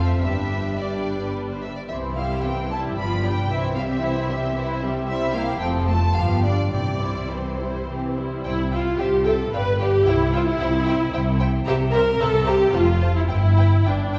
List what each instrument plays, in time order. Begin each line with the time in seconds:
Already playing: double bass section F1, cello section F2, viola section C4 F4, violin section A4 C5
0.07 violin section E5
0.21 double bass section G1, cello section G2, viola section G3 D4, violin section G4 B4 E5
0.78 viola section G3 D4, violin section G4 B4 D5
1.49 violin section C5
1.62 violin section E5
1.76 violin section D5
1.89 double bass section C2, cello section C3, viola section E3 C4, violin section E4 C5 E5
2.16 viola section G3 E4, violin section G4 E5 F5
2.43 viola section E3 C4, violin section E4 C5 G5
2.71 viola section G3 E4, violin section G4 E5 A5
2.97 double bass section G1, cello section G2, viola section F3 F4, violin section B4 D5 B5
3.23 viola section G3 D4, violin section G4 B4 G5
3.50 double bass section C2, cello section C3, viola section E3 E4, violin section E4 C5 E5
3.76 viola section G3 C4, violin section G4 E5 F5
3.89 violin section E5
4.03 viola section E3 E4, violin section E4 C5
4.30 viola section G3 C4, violin section G4 E5
4.55 viola section E3 E4, violin section E4 C5
4.81 viola section G3 C4, violin section G4 E5
5.08 viola section G3 C4, violin section E4 C5 E5
5.34 viola section A#3 E4, violin section G4 A#4 F5
5.60 double bass section F1, cello section F2, viola section F3 C4, violin section A4 C5 G5
5.88 viola section A3, violin section F4 A4 A5
6.16 double bass section G1, cello section G2, viola section F3 B3, violin section F4 G4 F5
6.44 viola section G3 D4, violin section D4 F4 D5
6.72 double bass section C2, cello section C3, viola section E3 C4, violin section G4 D5
7.01 viola section G3 E4, violin section E4 C5
7.31 viola section E3 C4, violin section G4 C5
7.59 viola section G3 E4, violin section E4 C5
7.88 viola section E3 C4, violin section G4
8.17 viola section G3 E4, violin section E4 C5
8.44 double bass section C2, cello section C3, viola section E4, violin section C5 E5 G5
8.72 viola section F4, violin section C5 E5 G5
8.99 double bass section C2, cello section C3, viola section G4, violin section C5 E5 G5
9.25 viola section A4, violin section C5 E5 G5
9.53 double bass section G1, cello section G2, viola section B4, violin section D5 F5 G5
9.80 viola section G4, violin section D5 F5 G5
10.06 double bass section C2, cello section C3, viola section E4, violin section C5 E5 G5
10.33 viola section F4, violin section C5 E5 G5
10.46 viola section E4
10.60 double bass section C2, cello section C3, violin section C5 E5 G5
10.86 violin section C5 E5 G5
11.13 double bass section C2, cello section C3, violin section C5 E5 G5
11.39 violin section C5 E5 G5
11.66 double bass section C2, cello section C3, viola section G4, violin section C5 E5 A#5
11.92 viola section A#4, violin section C5 E5 A#5
12.20 double bass section C2, cello section C3, viola section A4, violin section C5 E5 A#5
12.46 viola section G4, violin section C5 E5 A#5
12.73 double bass section F1, cello section F2, viola section F4, violin section C5 F5 A5
13.01 violin section C5 F5 A5
13.16 viola section E4
13.28 double bass section G1, cello section G2, viola section E4, violin section B4 G5
13.57 violin section B4 G5
13.85 double bass section G1, cello section G2, viola section D4, violin section B4 G5
14.14 violin section B4 G5